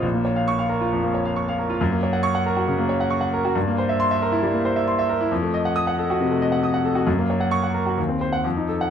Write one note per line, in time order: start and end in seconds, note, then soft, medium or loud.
0.02 0.89 A#1 medium
0.14 0.32 A#3 soft
0.25 0.43 C#5 soft
0.36 0.54 F5 soft
0.48 0.66 C#6 medium
0.59 0.77 F5 soft
0.69 0.87 A#4 soft
0.81 0.99 F4 soft
0.92 1.10 F2 soft
1.03 1.21 A#3 soft
1.14 1.32 C#5 soft
1.25 1.43 F5 soft
1.36 1.54 C#6 soft
1.48 1.65 F5 soft
1.59 1.76 A#4 soft
1.70 1.80 F4 soft
1.81 2.66 F#2 medium
1.92 2.09 A#3 soft
2.03 2.20 C#5 medium
2.13 2.31 F#5 soft
2.23 2.41 C#6 medium
2.35 2.52 F#5 medium
2.46 2.64 A#4 medium
2.57 2.74 F#4 soft
2.68 2.85 C#3 soft
2.78 2.96 A#3 soft
2.89 3.07 C#5 medium
3.00 3.18 F#5 soft
3.10 3.28 C#6 medium
3.21 3.39 F#5 medium
3.34 3.51 A#4 medium
3.45 3.55 F#4 medium
3.55 4.40 G2 medium
3.67 3.85 A#3 medium
3.78 3.95 C5 medium
3.89 4.06 E5 medium
4.00 4.17 C6 medium
4.11 4.28 E5 medium
4.22 4.39 A#4 medium
4.32 4.50 E4 medium
4.43 4.60 G3 soft
4.54 4.71 A#3 soft
4.65 4.82 C5 medium
4.76 4.93 E5 soft
4.88 5.05 C6 medium
4.99 5.16 E5 medium
5.09 5.27 A#4 medium
5.21 5.31 E4 soft
5.31 6.17 F2 medium
5.42 5.60 A3 soft
5.54 5.71 D#5 soft
5.65 5.82 F#5 medium
5.76 5.93 D#6 medium
5.87 6.04 F#5 medium
5.99 6.15 A4 soft
6.10 6.27 F#4 medium
6.21 6.38 C3 soft
6.31 6.48 A3 soft
6.42 6.59 D#5 soft
6.52 6.70 F#5 soft
6.63 6.81 D#6 soft
6.74 6.92 F#5 soft
6.85 7.03 A4 soft
6.95 7.07 F#4 medium
7.07 7.95 F#2 medium
7.18 7.36 A#3 soft
7.30 7.48 C#5 soft
7.40 7.59 F#5 soft
7.51 7.70 C#6 medium
7.63 7.82 F#5 soft
7.74 7.93 A#4 soft
7.86 7.98 F#4 soft
7.98 8.43 D#2 soft
8.09 8.28 C4 soft
8.21 8.40 C5 soft
8.33 8.45 F#5 medium
8.44 8.90 F2 soft
8.57 8.77 D#4 soft
8.69 8.89 A4 soft
8.81 8.90 F#5 medium